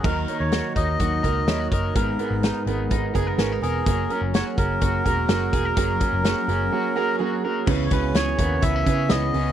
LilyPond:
<<
  \new Staff \with { instrumentName = "Melodica" } { \time 4/4 \key dis \phrygian \tempo 4 = 126 ais'8. cis''8. dis''2 dis''8 | ais'4. r2 gis'8~ | gis'8 ais'8 cis''8 ais'2~ ais'8~ | ais'2. r4 |
r16. cis''32 b'8 cis''4 e''4 dis''4 | }
  \new Staff \with { instrumentName = "Upright piano" } { \time 4/4 \key dis \phrygian <dis' fis' ais'>8 <dis' fis' cis''>8 <dis' fis' ais'>8 <dis' fis' cis''>8 <dis' fis' ais'>8 <dis' fis' ais'>8 <dis' fis' cis''>8 <dis' fis' ais'>8 | <b gis' ais'>8 <b gis' ais'>8 <b gis' ais'>8 <b gis' ais'>8 <b gis' ais'>8 <b gis' ais'>8 <b gis' ais'>8 <b gis' ais'>8 | <fis' gis' ais'>8 <fis' gis' ais'>8 <fis' gis' cis''>8 <fis' gis' ais'>8 <fis' gis' ais'>8 <fis' gis' ais'>8 <fis' gis' ais'>8 <fis' gis' ais'>8 | <fis' gis' ais'>8 <fis' gis' ais'>8 <fis' gis' ais'>8 <fis' gis' ais'>8 <fis' gis' cis''>8 <fis' gis' ais'>8 <fis' gis' ais'>8 <fis' gis' ais'>8 |
<cis' e' b'>8 <cis' e' fis'>8 <cis' e' cis''>8 <cis' e' ais'>8 <cis' e' b'>8 <cis' e' b'>8 <cis' e' b'>8 <cis' e' cis''>8 | }
  \new Staff \with { instrumentName = "Clean electric guitar" } { \time 4/4 \key dis \phrygian <dis ais'>8 dis'8 fis'8 dis'8 fis'8 ais'8 e'16 fis'16 ais'8 | <gis, ais'>8 b8 dis'8 b8 dis'8 gis'16 ais'16 cis'16 dis'16 ais'8 | <fis ais'>8 cis'8 fis'8 cis'8 fis'8 ais'8 fis'8 gis'16 ais'16 | <fis ais'>8 cis'8 fis'8 cis'8 fis'8 ais'8 fis'8 ais'8 |
cis8 cis'8 gis'8 b8 b16 cis'16 gis'8 b8 cis'8 | }
  \new Staff \with { instrumentName = "Clean electric guitar" } { \time 4/4 \key dis \phrygian <dis fis ais dis' ais'>8 <ais dis'>8 <dis fis ais dis' ais'>8 <ais ais'>8 <fis ais dis' ais'>8 <ais dis' ais'>8 <dis fis ais dis' ais'>8 <ais dis' ais'>8 | <gis b dis' ais'>8 <b dis' ais'>8 <gis b dis' ais'>8 <b dis' ais'>8 <gis b dis' ais'>8 <b dis' ais'>8 <gis b dis' ais'>8 <b dis'>8 | <fis ais cis' gis'>8 <ais cis' gis'>8 <fis ais cis' gis'>8 <ais cis' gis'>8 <fis ais cis' gis'>8 <ais cis' gis'>8 <fis ais cis' gis'>8 <ais cis' gis'>8 | <fis ais cis' gis'>8 <ais cis' gis'>8 <fis ais cis' gis'>8 <ais cis'>8 <fis ais cis' gis'>8 <cis' gis'>8 <fis ais cis' gis'>8 <ais cis' gis'>8 |
<cis e b cis' gis'>8 <b cis' gis'>8 <e b cis' gis'>8 <b cis' gis'>8 <cis e b cis' gis'>8 <cis' gis'>8 <e b cis' gis'>8 <b cis' gis'>8 | }
  \new Staff \with { instrumentName = "Picked electric bass" } { \clef bass \time 4/4 \key dis \phrygian dis,8 r16 dis,8 r16 dis,8 dis,8 cis,8 dis,8 fis,,8 | gis,,8 r16 gis,,8 r16 gis,,8 gis,,8 fis,,8 gis,,8 e,,8 | fis,,8 r16 fis,,8 r16 fis,,8 fis,,8 e,,8 fis,,8 e,,8 | fis,,8 r16 fis,,8 r16 fis,,8 r2 |
cis,8 cis,8 cis,8 dis,8 cis,8 cis8 cis,8 cis,8 | }
  \new DrumStaff \with { instrumentName = "Drums" } \drummode { \time 4/4 <cymc bd>8 hh8 <hh sn>8 <hh bd>8 <hh bd>8 <hh bd>8 <hh sn>8 <hh bd>8 | <hh bd>8 hh8 <hh sn>8 hh8 <hh bd>8 <hh bd>8 <hh sn>8 hh8 | <hh bd>8 hh8 <hh sn>8 <hh bd>8 <hh bd>8 <hh bd>8 <hh sn>8 <hh bd>8 | <hh bd>8 <hh bd>8 <hh sn>8 hh8 r4 r4 |
<cymc bd>8 <hh bd>8 <hh sn>8 <hh bd>8 <hh bd>8 <hh bd>8 <hh sn>8 hho8 | }
>>